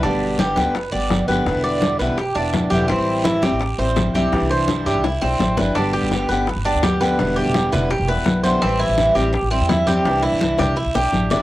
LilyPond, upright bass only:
\new Staff \with { instrumentName = "Upright bass" } { \clef bass \time 4/4 \key g \major \tempo 4 = 168 g,,16 g,,4~ g,,16 d,16 g,,8. g,,4 g,,8 | e,,16 e,,4~ e,,16 b,,16 e,,8. e,,4 e,,8 | a,,16 a,,4~ a,,16 e,16 a,,8. a,,4 b,,8 | c,16 c,4~ c,16 g,16 c,8. b,,8 a,,8 g,,8 |
g,,8. g,,8. g,,8. g,,8 d,4~ d,16 | e,,8. e,,8. e,,8. e,,8 b,,4~ b,,16 | a,,8. a,,8. a,,8. a,,8 e,4~ e,16 | c,8. c,8. c,8. c,16 b,,8 a,,8 g,,8 | }